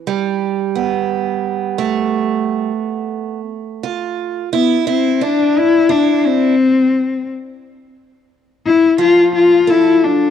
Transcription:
<<
  \new Staff \with { instrumentName = "Steel-string acoustic guitar" } { \time 6/8 \key g \mixolydian \tempo 4. = 58 g4 b4. a8~ | a2~ a8 f'8~ | f'8 e'8 e'8 d'4 e'8~ | e'8 r2 r8 |
r4 f4 a'4 | }
  \new Staff \with { instrumentName = "Cello" } { \time 6/8 \key g \mixolydian r2. | r2. | r8 b8 c'8 d'8 e'8 d'8 | c'4. r4. |
r8 e'8 f'8 f'8 e'8 d'8 | }
>>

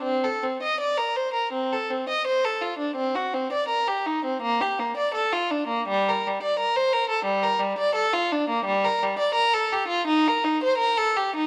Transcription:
\new Staff \with { instrumentName = "Violin" } { \time 4/4 \key g \minor \tempo 4 = 84 c'16 a'16 c'16 ees''16 d''16 bes'16 c''16 bes'16 c'16 a'16 c'16 ees''16 c''16 a'16 f'16 d'16 | c'16 fis'16 c'16 d''16 bes'16 g'16 ees'16 c'16 bes16 g'16 bes16 d''16 a'16 f'16 d'16 bes16 | g16 bes'16 g16 d''16 bes'16 c''16 bes'16 a'16 g16 bes'16 g16 d''16 a'16 f'16 d'16 bes16 | g16 bes'16 g16 d''16 bes'16 a'16 g'16 f'16 ees'16 bes'16 ees'16 c''16 bes'16 a'16 g'16 ees'16 | }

